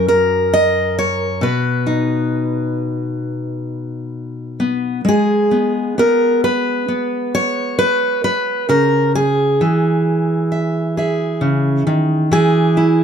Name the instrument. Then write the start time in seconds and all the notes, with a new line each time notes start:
steel-string acoustic guitar
Already playing: F#2
0.08 A#4
0.53 D#5
0.99 C#5
1.41 B2 B4
1.86 D#4
4.60 B3
5.05 G#3 G#4
5.51 B3
5.98 B3 A#4
6.44 B4
6.88 B3
7.35 C#5
7.79 B4
8.24 B4
8.69 C#3 A#4
9.15 G#4
9.61 E3
10.52 E5
10.97 G#4 E5
11.41 C#3
11.87 D#3
12.31 E3 G#4
12.77 E4